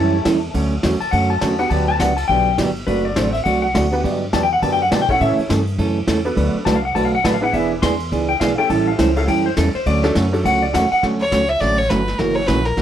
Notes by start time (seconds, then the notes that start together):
Already playing: F#2 E3 G3 C#4 E4 G4 A4 C#5 A5
0.25 E2 E3 G3 C#4 E4 A4, kick, snare, hi-hat pedal, ride
0.54 D2 D3 F#3 A3 C#4 F#4, kick, ride
0.83 E2 D3 F#3 A3 C#4 F#4, kick, snare, hi-hat pedal, ride
1.01 A5, muted upright bass stroke, ride
1.11 F#2 D3 F#3 A3 C#4 F#4 F#5, kick, ride
1.30 A5
1.41 E2 D3 F#3 A3 C#4 F#4 A5, kick, snare, hi-hat pedal, ride
1.59 B3 D4 F#4 G4 B4 F#5, ride
1.70 D2 D3 F#3 B3 D4 G4 A5, kick, ride
1.88 A5
1.99 C#2 D3 F#3 B3 D4 G4 F#5, kick, snare, hi-hat pedal, ride
2.17 A5, ride
2.28 B1 D3 F#3 B3 D4 G4 G5, kick
2.58 G1 D3 F#3 B3 D4 G4, kick, snare, hi-hat pedal, ride
2.76 ride
2.87 F#1 C3 F#3 A3 D4 F#4 B4, kick, ride
3.05 D5
3.16 A1 C3 F#3 A3 C4 D4 F#4 A4 C5, kick, snare, hi-hat pedal, ride
3.33 E5, ride
3.44 C2 C3 F#3 A3 D4 F#4 F#5, kick, ride
3.62 F#5
3.74 D2 C3 F#3 A3 D4 F#4, kick, snare, hi-hat pedal, ride
3.92 B3 D4 F#4 G4 B4, ride
4.04 G2 D3 F#3 B3 D4 G4, kick, ride
4.33 E2 D3 F#3 B3 D4 G4 A5, kick, snare, hi-hat pedal, ride
4.43 G5
4.53 F#5
4.62 F#2 D3 F#3 B3 D4 G4 A5, kick, ride
4.72 G5
4.82 F#5
4.91 B2 D3 F#3 B3 D4 G4 A5, kick, snare, hi-hat pedal, ride
5.02 G5
5.09 A3 C#4 E4 A4 C#5 F#5, kick, ride
5.20 A2 C#3 E3 A3 C#4 A4 E5, kick, ride
5.38 muted upright bass stroke, ride
5.49 G2 C#3 E3 A3 C#4 A4, kick, snare, hi-hat pedal, ride
5.67 ride
5.78 F#2 C#3 E3 A3 C#4 A4, kick, ride
6.07 E2 C#3 E3 A3 C#4 A4, kick, snare, hi-hat pedal, ride
6.25 B3 D4 F#4 A4 B4, ride
6.36 D2 D3 F#3 A3 D4 F#4 B4, kick, ride
6.55 muted upright bass stroke
6.65 C2 D3 F#3 A3 D4 F#4 B4 A5, kick, snare, hi-hat pedal, ride
6.75 F5
6.85 F#5
6.94 B1 D3 F#3 A3 D4 F#4 B4 A5, kick, ride
7.05 F5
7.15 F#5
7.24 A1 D3 F#3 A3 D4 F#4 B4 A5, kick, snare, hi-hat pedal, ride
7.34 F5
7.41 B3 D4 E4 G#4 B4 F#5
7.53 E1 E3 B3 D4 G#4 E5, kick, ride
7.82 E2 E3 B3 D4 G#4 C6, kick, snare, hi-hat pedal, ride
8.00 ride
8.12 C#2 E3 B3 D4 G#4, kick, ride
8.29 G5
8.40 B1 E3 B3 D4 G#4 F5, kick, snare, hi-hat pedal, ride
8.57 A3 C#4 E4 G4 A4 G5, muted upright bass stroke
8.70 A1 E3 G3 C#4 E4 A4 A5, kick, ride
8.87 F5
8.98 C#2 E3 G3 C#4 E4 A4 C5, kick, snare, hi-hat pedal, ride
9.16 A3 C#4 E4 G4 A4 F5, ride
9.27 F#2 E3 G3 C#4 E4 A4 G5, kick, ride
9.46 C5
9.57 E2 E3 G3 C#4 E4 A4, kick, snare, hi-hat pedal, ride
9.75 C5, muted upright bass stroke, ride
9.86 D2 D3 F#3 A3 C#4 F#4 D5, kick, ride
10.03 A3 C#4 D4 F#4 A4, snare
10.15 F#2 D3 F#3 A3 C#4 F#4, kick, snare, hi-hat pedal, ride
10.32 A3 C#4 D4 F#4 A4, ride
10.44 C#2 D3 F#3 A3 C#4 F#4 F#5, kick, ride
10.62 D5
10.73 E2 D3 F#3 A3 C#4 F#4 F#5, kick, snare, hi-hat pedal, ride
10.92 F#5, muted upright bass stroke, ride
11.03 D2 D3 F#3 A3 C#4 F#4, brush sweep, kick, snare
11.20 C#5
11.32 C#2 D3 F#3 A3 C#4 F#4, kick, snare, hi-hat pedal
11.49 E5
11.60 A1 D3 F#3 A3 C#4 F#4 D5, brush sweep, kick, snare
11.78 C#5
11.89 G1 D3 F#3 A3 C#4 F#4 B4, kick, snare, hi-hat pedal
12.08 snare
12.18 F#1 C#3 E3 A#3 C#4 F#4 A#4, brush sweep, kick, snare
12.35 C#5
12.47 A#1 C#3 E3 A#3 C#4 F#4 B4, kick, snare, hi-hat pedal
12.65 A#4, snare
12.77 C#2 C#3 E3 A#3 C#4 F#4, brush sweep, kick, snare